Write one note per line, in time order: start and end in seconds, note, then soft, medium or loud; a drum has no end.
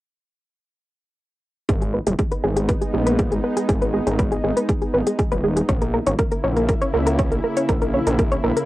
1.69 1.99 G#1 medium
1.69 5.65 G#3 medium
1.69 5.65 B3 medium
1.69 5.65 D#4 medium
1.69 1.76 G#4 medium
1.69 kick loud
1.69 closed hi-hat medium
1.82 1.88 G#4 medium
1.82 closed hi-hat soft
1.94 1.98 B4 medium
2.07 2.14 D#1 medium
2.07 2.13 G#4 medium
2.07 closed hi-hat medium
2.19 2.26 G#4 medium
2.19 kick loud
2.19 closed hi-hat medium
2.32 2.36 B4 medium
2.32 closed hi-hat soft
2.44 2.74 G#1 medium
2.44 2.51 G#4 medium
2.57 2.63 G#4 medium
2.57 closed hi-hat medium
2.69 2.73 B4 medium
2.69 kick loud
2.69 closed hi-hat medium
2.82 2.88 G#4 medium
2.82 closed hi-hat soft
2.94 3.33 A#1 medium
2.94 3.01 G#4 medium
3.07 3.11 B4 medium
3.07 closed hi-hat medium
3.19 3.26 G#4 medium
3.19 kick loud
3.19 closed hi-hat medium
3.32 3.39 G#1 medium
3.32 3.38 G#4 medium
3.32 closed hi-hat soft
3.44 3.48 B4 medium
3.57 3.63 G#4 medium
3.57 closed hi-hat medium
3.69 3.99 G#1 medium
3.69 3.76 G#4 medium
3.69 kick loud
3.69 closed hi-hat medium
3.82 3.86 B4 medium
3.82 closed hi-hat soft
3.94 4.01 G#4 medium
4.07 4.37 G#1 medium
4.07 4.13 G#4 medium
4.07 closed hi-hat medium
4.19 4.23 B4 medium
4.19 kick loud
4.19 closed hi-hat medium
4.32 4.38 G#4 medium
4.32 closed hi-hat soft
4.44 4.52 G#1 medium
4.44 4.51 G#4 medium
4.57 4.61 B4 medium
4.57 closed hi-hat medium
4.69 4.76 G#4 medium
4.69 kick loud
4.69 closed hi-hat medium
4.82 4.88 G#4 medium
4.82 closed hi-hat soft
4.94 5.02 G#1 medium
4.94 4.98 B4 medium
5.07 5.13 G#4 medium
5.07 closed hi-hat medium
5.19 5.26 G#4 medium
5.19 kick loud
5.19 closed hi-hat medium
5.32 5.62 D#1 medium
5.32 5.36 B4 medium
5.32 closed hi-hat soft
5.44 5.51 G#4 medium
5.57 5.63 G#4 medium
5.57 closed hi-hat medium
5.69 5.99 A#1 medium
5.69 8.65 C#3 medium
5.69 8.65 A#3 medium
5.69 8.65 E4 medium
5.69 5.73 C#5 medium
5.69 kick loud
5.69 closed hi-hat medium
5.82 5.88 A#4 medium
5.82 closed hi-hat soft
5.94 6.01 A#4 medium
6.07 6.14 G#1 medium
6.07 6.11 C#5 medium
6.07 closed hi-hat medium
6.19 6.26 A#4 medium
6.19 kick loud
6.19 closed hi-hat medium
6.32 6.38 A#4 medium
6.32 closed hi-hat soft
6.44 6.74 A#1 medium
6.44 6.48 C#5 medium
6.57 6.63 A#4 medium
6.57 closed hi-hat medium
6.69 6.76 A#4 medium
6.69 kick loud
6.69 closed hi-hat medium
6.82 6.85 C#5 medium
6.82 closed hi-hat soft
6.94 7.33 C#2 medium
6.94 7.01 A#4 medium
7.07 7.13 A#4 medium
7.07 closed hi-hat medium
7.19 7.23 C#5 medium
7.19 kick loud
7.19 closed hi-hat soft
7.32 7.39 A#1 medium
7.32 7.38 A#4 medium
7.32 closed hi-hat soft
7.44 7.51 A#4 medium
7.57 7.61 C#5 medium
7.57 closed hi-hat medium
7.69 7.99 A#1 medium
7.69 7.76 A#4 medium
7.69 kick loud
7.69 closed hi-hat medium
7.82 7.88 A#4 medium
7.82 closed hi-hat soft
7.94 7.98 C#5 medium
8.07 8.37 A#1 medium
8.07 8.13 A#4 medium
8.07 closed hi-hat medium
8.19 8.26 A#4 medium
8.19 kick loud
8.19 closed hi-hat medium
8.32 8.36 C#5 medium
8.32 closed hi-hat soft
8.44 8.52 A#1 medium
8.44 8.51 A#4 medium
8.57 8.63 A#4 medium
8.57 closed hi-hat medium